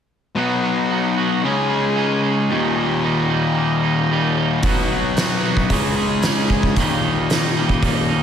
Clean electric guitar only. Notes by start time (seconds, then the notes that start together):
0.36 B2 F#3 B3 D#4 F#4
0.64 B3 D#4 F#4
0.91 F#3 B3 D#4 F#4
1.18 B2 F#3 B3 D#4 F#4
1.44 C#3 G#3 C#4 D#4 G#4
1.69 C#4 D#4 G#4
1.95 C#3 G#3 C#4 D#4 G#4
2.23 C#4 D#4 G#4
2.50 D#2 A#2 D#3 G3 A#3 D#4
2.76 D#3 G3 A#3 D#4
3.03 D#3 G3 A#3 D#4
3.30 D#2 A#2 D#3 G3 A#3 D#4
3.57 D#3 G3 A#3 D#4
3.84 D#3 G3 A#3 D#4
4.10 D#2 A#2 D#3 G3 A#3 D#4
4.37 D#3 G3 A#3 D#4
4.63 B2 F#3 B3 D#4 F#4
4.92 B3 D#4 F#4
5.18 F#3 B3 D#4 F#4
5.44 B2 F#3 B3 D#4 F#4
5.71 C#3 G#3 C#4 D#4 G#4
5.97 C#4 D#4 G#4
6.24 C#3 G#3 C#4 D#4 G#4
6.50 C#4 D#4 G#4
6.77 D#2 A#2 D#3 G3 A#3 D#4
7.03 D#3 G3 A#3 D#4
7.30 D#3 G3 A#3 D#4
7.57 D#2 A#2 D#3 G3 A#3 D#4
7.84 D#3 G3 A#3 D#4
8.09 D#3 G3 A#3 D#4